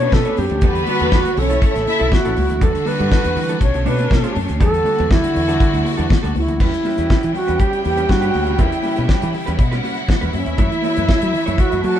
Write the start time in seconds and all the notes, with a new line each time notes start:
Already playing: A3 C#4 D4 C#5
0.00 A3 B3 D4 F#4 B4 C#5, closed hi-hat
0.12 B2 A4, muted clean electric guitar stroke, kick, snare, muted conga, high conga
0.25 A3 D4 F#4 C#5, closed hi-hat
0.37 F#2 G4, muted clean electric guitar stroke, open hi-hat, muted conga, high conga
0.50 D2, muted clean electric guitar stroke, closed hi-hat, low conga
0.61 E2 D3 G3 A3 B3 D4 F#4 A4 B4, kick, closed hi-hat, muted conga, low conga
0.75 muted clean electric guitar stroke, closed hi-hat
0.86 G3 D4 F#4 A4, open hi-hat, muted conga, high conga
0.99 E2 G3 D4 F#4 A4, closed hi-hat, high conga
1.12 G3 D4 F#4 A4, kick, snare
1.25 muted clean electric guitar stroke, closed hi-hat, high conga
1.36 B1 C#3 A3 C#4 E4 A4 C#5, muted clean electric guitar stroke, open hi-hat, muted conga, low conga
1.50 A3 C#4 E4 A4, closed hi-hat
1.62 A3 C#4 E4 A4, kick, closed hi-hat, muted conga
1.75 A1, muted clean electric guitar stroke, snare, closed hi-hat
1.87 E4 E5, muted clean electric guitar stroke, open hi-hat, muted conga, high conga
2.00 B1 A3 C#4 E4 A4, closed hi-hat
2.12 F#4, muted clean electric guitar stroke, kick, snare, muted conga, high conga
2.25 A1 A3 C#4 E4 A4, closed hi-hat
2.36 C#2, muted clean electric guitar stroke, open hi-hat, muted conga, high conga
2.49 D2, muted clean electric guitar stroke, closed hi-hat, low conga
2.61 E2 D3 G3 A3 D4 F#4 A4, kick, closed hi-hat, muted conga, low conga
2.74 muted clean electric guitar stroke, closed hi-hat
2.85 G3 D4 F#4 A4 B4, open hi-hat, muted conga, high conga
2.99 G2 G3 D4 F#4 A4, closed hi-hat, high conga
3.11 G3 D4 F#4 A4, kick, snare, muted conga
3.24 E2, muted clean electric guitar stroke, closed hi-hat, high conga
3.35 E3, muted clean electric guitar stroke, open hi-hat, low conga
3.49 G3 D4 F#4 A4, closed hi-hat
3.60 B1 C#4 D4 C#5, kick, closed hi-hat, muted conga
3.74 B1, muted clean electric guitar stroke, closed hi-hat
3.85 B2 A3 D4 F#4 B4 C#5, open hi-hat, muted conga, high conga
3.99 A3 D4 F#4 C#5, closed hi-hat
4.10 B2, kick, snare, muted conga, high conga
4.24 A3 D4 F#4 C#5, closed hi-hat
4.35 F#2, muted clean electric guitar stroke, open hi-hat, muted conga, high conga
4.48 D2, muted clean electric guitar stroke, closed hi-hat, low conga
4.60 E2 D3 G3 D4 F#4 A4, kick, closed hi-hat, low conga
4.73 muted clean electric guitar stroke, closed hi-hat
4.84 G3 D4 F#4 A4, open hi-hat, high conga
4.98 E2 G3 D4 F#4 A4, closed hi-hat, high conga
5.10 G3 D4 E4 F#4 A4, kick, snare, muted conga
5.23 muted clean electric guitar stroke, closed hi-hat, high conga
5.34 E2 G3, muted clean electric guitar stroke, open hi-hat, muted conga, low conga
5.48 G3 D4 F#4 A4, closed hi-hat
5.60 G3 D4 F#4 A4, kick, closed hi-hat, muted conga
5.73 D2, muted clean electric guitar stroke, closed hi-hat
5.85 muted clean electric guitar stroke, open hi-hat, muted conga, high conga
5.98 E2 G3 D4 F#4 A4, closed hi-hat
6.09 kick, snare, muted conga, high conga
6.23 D2 G3 D4 F#4 A4, closed hi-hat
6.35 C#2 E4, muted clean electric guitar stroke, open hi-hat, muted conga, high conga
6.48 D2, muted clean electric guitar stroke, closed hi-hat, low conga
6.60 E2 C#3 G3 C#4 E4 F#4 B4 G5, kick, crash, low conga
6.74 muted clean electric guitar stroke, closed hi-hat
6.84 G3 C#4 F#4 B4, open hi-hat, muted conga, high conga
6.98 E2 G3 C#4 F#4 B4, closed hi-hat, high conga
7.10 G3 C#4 F#4 B4, kick, snare, muted conga
7.23 E3, muted clean electric guitar stroke, closed hi-hat
7.34 F#4, muted clean electric guitar stroke, open hi-hat, muted conga, low conga
7.48 E2 G3 C#4 F#4 B4, closed hi-hat
7.59 G3 C#4 F#4 G4 B4, kick, closed hi-hat
7.73 muted clean electric guitar stroke, closed hi-hat
7.84 E2 G4, muted clean electric guitar stroke, open hi-hat, muted conga, high conga
7.97 G3 C#4 F#4 B4, closed hi-hat
8.09 G2 F#4, muted clean electric guitar stroke, kick, snare, muted conga, high conga
8.22 G3 C#4 F#4 B4, closed hi-hat
8.34 D2, muted clean electric guitar stroke, open hi-hat, high conga
8.47 muted clean electric guitar stroke, closed hi-hat, low conga
8.58 E2 G3 C#4 E4 F#4 B4, kick, closed hi-hat, muted conga, low conga
8.71 muted clean electric guitar stroke, closed hi-hat
8.82 G3 C#4 F#4 B4, open hi-hat, muted conga, high conga
8.96 B2 G3 C#4 F#4 B4, closed hi-hat, high conga
9.08 G3 C#4 F#4 B4, kick, snare, muted conga
9.22 E3, muted clean electric guitar stroke, closed hi-hat
9.33 muted clean electric guitar stroke, open hi-hat, muted conga, low conga
9.46 E2 G3 C#4 F#4 B4, closed hi-hat
9.58 B2 F#4 F#5, muted clean electric guitar stroke, kick, closed hi-hat, muted conga
9.71 G3 C#4 F#4 B4, snare, closed hi-hat
9.83 G3 C#4 F#4 B4, open hi-hat, high conga
9.97 muted clean electric guitar stroke, closed hi-hat
10.08 muted clean electric guitar stroke, kick, snare, high conga
10.21 E2 G3 C#4 F#4 B4, closed hi-hat
10.33 F#2 E3 A3 C#4 E4 E5, muted clean electric guitar stroke, open hi-hat, muted conga, high conga
10.46 E2, muted clean electric guitar stroke, closed hi-hat, low conga
10.58 F#2 A3 E4 F#4 C#5, kick, closed hi-hat, muted conga, low conga
10.72 muted clean electric guitar stroke, closed hi-hat
10.82 A3 E4 F#4 C#5, open hi-hat, high conga
10.96 F#2 A3 E4 F#4 C#5, closed hi-hat, high conga
11.08 A3 E4 F#4 C#5, muted fingered electric bass stroke, kick, snare, muted conga
11.21 F#3, muted clean electric guitar stroke, closed hi-hat
11.33 muted clean electric guitar stroke, open hi-hat, muted conga, low conga
11.46 F#2 A3 E4 F#4 C#5, closed hi-hat
11.58 A3 E4 F#4 C#5, kick, closed hi-hat, muted conga
11.71 F#2, muted clean electric guitar stroke, closed hi-hat
11.83 F#3 F#4 A4 A5, muted clean electric guitar stroke, open hi-hat, high conga
11.96 F#4 C#5, closed hi-hat